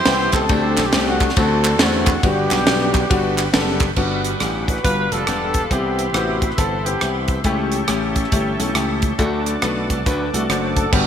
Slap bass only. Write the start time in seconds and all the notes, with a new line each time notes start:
0.06 C2
0.33 C#2
0.49 D2
0.78 B1
0.93 C2
1.37 D2
1.80 E2
2.23 G1
2.51 B1
2.67 B1
3.11 G1
3.54 F#1
3.97 G1
4.40 A1
4.84 G1
5.12 F1
5.28 E1
5.71 C2
6.14 A1
6.58 G1
7.02 C2
7.44 C#2
7.89 A1
8.33 G1
8.59 B1
8.75 C#2
9.19 D2
9.63 B1
9.90 C2
10.06 D2
10.33 C2
10.49 F#1
10.93 G1